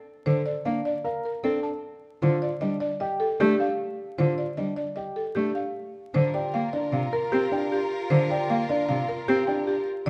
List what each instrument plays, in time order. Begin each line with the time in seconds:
0.26 cello D3, grand piano A4, marimba C5
0.46 marimba D5
0.65 cello A#3, grand piano D4, marimba F5
0.85 marimba D5
1.04 grand piano A#4, marimba F5
1.25 marimba A#4
1.44 cello C4, grand piano D4, marimba A4
1.63 marimba A5
2.22 cello D3, grand piano F4, marimba C5
2.42 marimba D5
2.61 cello G3, grand piano D4, marimba D#5
2.80 marimba D5
3.00 grand piano G4, marimba D#5
3.20 marimba A4
3.40 cello A3, grand piano D4, marimba G4
3.60 marimba F5
4.18 cello D3, grand piano F4, marimba C5
4.38 marimba D5
4.57 cello G3, grand piano D4, marimba D#5
4.77 marimba D5
4.96 grand piano G4, marimba D#5
5.16 marimba A4
5.35 cello A3, grand piano D4, marimba G4
5.55 marimba F5
6.14 cello D3, string section F4 A#4, marimba C5
6.34 grand piano G4, marimba D5
6.54 cello A#3, marimba F5
6.73 grand piano D4, marimba D5
6.92 cello C3, marimba F5
7.13 grand piano A#4, marimba A#4
7.32 cello C4, marimba G4
7.51 grand piano D4, marimba G5
7.72 marimba G4
8.10 cello D3, marimba C5
8.30 grand piano G4, marimba D5
8.50 cello A#3, marimba F5
8.69 grand piano D4, marimba D5
8.88 cello C3, marimba F5
9.08 marimba A#4, grand piano A#4
9.28 cello C4, marimba G4
9.47 grand piano D4, marimba G5
9.67 marimba G4
10.06 string section F4 A4, marimba D5